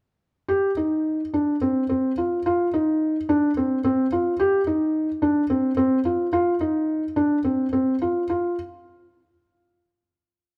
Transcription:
0, 0, Header, 1, 2, 480
1, 0, Start_track
1, 0, Tempo, 563910
1, 409, Time_signature, 7, 3, 24, 8
1, 2326, Tempo, 554529
1, 9113, End_track
2, 0, Start_track
2, 0, Title_t, "Felt piano"
2, 0, Program_c, 0, 0
2, 413, Note_on_c, 0, 67, 69
2, 593, Note_off_c, 0, 67, 0
2, 654, Note_on_c, 0, 63, 54
2, 1016, Note_off_c, 0, 63, 0
2, 1137, Note_on_c, 0, 62, 59
2, 1316, Note_off_c, 0, 62, 0
2, 1375, Note_on_c, 0, 60, 59
2, 1554, Note_off_c, 0, 60, 0
2, 1612, Note_on_c, 0, 60, 58
2, 1793, Note_off_c, 0, 60, 0
2, 1852, Note_on_c, 0, 65, 53
2, 2032, Note_off_c, 0, 65, 0
2, 2094, Note_on_c, 0, 65, 67
2, 2272, Note_off_c, 0, 65, 0
2, 2328, Note_on_c, 0, 63, 61
2, 2691, Note_off_c, 0, 63, 0
2, 2809, Note_on_c, 0, 62, 69
2, 2989, Note_off_c, 0, 62, 0
2, 3051, Note_on_c, 0, 60, 57
2, 3230, Note_off_c, 0, 60, 0
2, 3288, Note_on_c, 0, 60, 72
2, 3468, Note_off_c, 0, 60, 0
2, 3530, Note_on_c, 0, 65, 60
2, 3708, Note_off_c, 0, 65, 0
2, 3765, Note_on_c, 0, 67, 77
2, 3945, Note_off_c, 0, 67, 0
2, 4002, Note_on_c, 0, 63, 55
2, 4362, Note_off_c, 0, 63, 0
2, 4479, Note_on_c, 0, 62, 65
2, 4659, Note_off_c, 0, 62, 0
2, 4720, Note_on_c, 0, 60, 60
2, 4899, Note_off_c, 0, 60, 0
2, 4955, Note_on_c, 0, 60, 71
2, 5135, Note_off_c, 0, 60, 0
2, 5198, Note_on_c, 0, 65, 56
2, 5378, Note_off_c, 0, 65, 0
2, 5438, Note_on_c, 0, 65, 69
2, 5618, Note_off_c, 0, 65, 0
2, 5679, Note_on_c, 0, 63, 54
2, 6043, Note_off_c, 0, 63, 0
2, 6161, Note_on_c, 0, 62, 66
2, 6343, Note_off_c, 0, 62, 0
2, 6404, Note_on_c, 0, 60, 51
2, 6587, Note_off_c, 0, 60, 0
2, 6649, Note_on_c, 0, 60, 60
2, 6832, Note_off_c, 0, 60, 0
2, 6900, Note_on_c, 0, 65, 58
2, 7080, Note_off_c, 0, 65, 0
2, 7141, Note_on_c, 0, 65, 61
2, 7361, Note_off_c, 0, 65, 0
2, 9113, End_track
0, 0, End_of_file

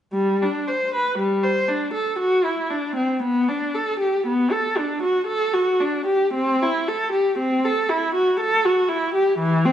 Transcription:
0, 0, Header, 1, 2, 480
1, 0, Start_track
1, 0, Key_signature, 1, "major"
1, 0, Tempo, 1071429
1, 57, Time_signature, 3, 2, 24, 8
1, 534, Tempo, 1025641
1, 2454, Tempo, 1048951
1, 3414, Tempo, 1010101
1, 4522, End_track
2, 0, Start_track
2, 0, Title_t, "Viola"
2, 0, Program_c, 0, 41
2, 59, Note_on_c, 0, 55, 67
2, 181, Note_off_c, 0, 55, 0
2, 189, Note_on_c, 0, 62, 54
2, 305, Note_on_c, 0, 72, 57
2, 306, Note_off_c, 0, 62, 0
2, 421, Note_off_c, 0, 72, 0
2, 425, Note_on_c, 0, 71, 56
2, 532, Note_on_c, 0, 55, 57
2, 535, Note_off_c, 0, 71, 0
2, 646, Note_on_c, 0, 72, 59
2, 650, Note_off_c, 0, 55, 0
2, 764, Note_on_c, 0, 62, 55
2, 769, Note_off_c, 0, 72, 0
2, 884, Note_on_c, 0, 69, 51
2, 887, Note_off_c, 0, 62, 0
2, 1004, Note_off_c, 0, 69, 0
2, 1004, Note_on_c, 0, 66, 67
2, 1119, Note_on_c, 0, 64, 56
2, 1124, Note_off_c, 0, 66, 0
2, 1243, Note_on_c, 0, 62, 57
2, 1244, Note_off_c, 0, 64, 0
2, 1362, Note_on_c, 0, 60, 49
2, 1365, Note_off_c, 0, 62, 0
2, 1482, Note_off_c, 0, 60, 0
2, 1487, Note_on_c, 0, 59, 63
2, 1606, Note_off_c, 0, 59, 0
2, 1609, Note_on_c, 0, 62, 56
2, 1730, Note_off_c, 0, 62, 0
2, 1732, Note_on_c, 0, 69, 54
2, 1849, Note_on_c, 0, 67, 53
2, 1853, Note_off_c, 0, 69, 0
2, 1971, Note_off_c, 0, 67, 0
2, 1975, Note_on_c, 0, 59, 59
2, 2088, Note_on_c, 0, 69, 62
2, 2094, Note_off_c, 0, 59, 0
2, 2210, Note_on_c, 0, 62, 57
2, 2213, Note_off_c, 0, 69, 0
2, 2330, Note_on_c, 0, 66, 55
2, 2333, Note_off_c, 0, 62, 0
2, 2445, Note_on_c, 0, 69, 66
2, 2450, Note_off_c, 0, 66, 0
2, 2564, Note_on_c, 0, 66, 61
2, 2565, Note_off_c, 0, 69, 0
2, 2687, Note_off_c, 0, 66, 0
2, 2688, Note_on_c, 0, 62, 57
2, 2807, Note_on_c, 0, 67, 58
2, 2811, Note_off_c, 0, 62, 0
2, 2932, Note_off_c, 0, 67, 0
2, 2933, Note_on_c, 0, 60, 66
2, 3056, Note_off_c, 0, 60, 0
2, 3061, Note_on_c, 0, 64, 60
2, 3180, Note_on_c, 0, 69, 58
2, 3181, Note_off_c, 0, 64, 0
2, 3292, Note_on_c, 0, 67, 57
2, 3298, Note_off_c, 0, 69, 0
2, 3410, Note_off_c, 0, 67, 0
2, 3412, Note_on_c, 0, 60, 64
2, 3532, Note_off_c, 0, 60, 0
2, 3536, Note_on_c, 0, 69, 66
2, 3654, Note_on_c, 0, 64, 60
2, 3658, Note_off_c, 0, 69, 0
2, 3775, Note_on_c, 0, 66, 56
2, 3777, Note_off_c, 0, 64, 0
2, 3894, Note_on_c, 0, 69, 73
2, 3895, Note_off_c, 0, 66, 0
2, 4013, Note_off_c, 0, 69, 0
2, 4013, Note_on_c, 0, 66, 63
2, 4127, Note_on_c, 0, 64, 68
2, 4135, Note_off_c, 0, 66, 0
2, 4248, Note_on_c, 0, 67, 60
2, 4251, Note_off_c, 0, 64, 0
2, 4364, Note_on_c, 0, 52, 76
2, 4369, Note_off_c, 0, 67, 0
2, 4487, Note_off_c, 0, 52, 0
2, 4489, Note_on_c, 0, 60, 65
2, 4522, Note_off_c, 0, 60, 0
2, 4522, End_track
0, 0, End_of_file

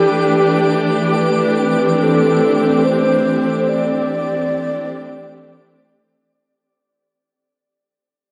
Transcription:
0, 0, Header, 1, 4, 480
1, 0, Start_track
1, 0, Tempo, 500000
1, 7983, End_track
2, 0, Start_track
2, 0, Title_t, "Synth texture"
2, 0, Program_c, 0, 99
2, 0, Note_on_c, 0, 86, 81
2, 6006, Note_off_c, 0, 86, 0
2, 7983, End_track
3, 0, Start_track
3, 0, Title_t, "Alto flute"
3, 0, Program_c, 1, 73
3, 0, Note_on_c, 1, 67, 79
3, 692, Note_off_c, 1, 67, 0
3, 1121, Note_on_c, 1, 71, 83
3, 1944, Note_on_c, 1, 69, 82
3, 1958, Note_off_c, 1, 71, 0
3, 2727, Note_on_c, 1, 72, 91
3, 2742, Note_off_c, 1, 69, 0
3, 3541, Note_on_c, 1, 74, 95
3, 3556, Note_off_c, 1, 72, 0
3, 5566, Note_off_c, 1, 74, 0
3, 7983, End_track
4, 0, Start_track
4, 0, Title_t, "String section"
4, 0, Program_c, 2, 48
4, 0, Note_on_c, 2, 52, 70
4, 0, Note_on_c, 2, 57, 58
4, 0, Note_on_c, 2, 62, 69
4, 0, Note_on_c, 2, 67, 62
4, 0, Note_on_c, 2, 71, 72
4, 1097, Note_off_c, 2, 71, 0
4, 1481, Note_on_c, 2, 60, 74
4, 5953, Note_off_c, 2, 57, 0
4, 5955, Note_off_c, 2, 52, 0
4, 5960, Note_off_c, 2, 62, 0
4, 5963, Note_off_c, 2, 67, 0
4, 5964, Note_off_c, 2, 60, 0
4, 7983, End_track
0, 0, End_of_file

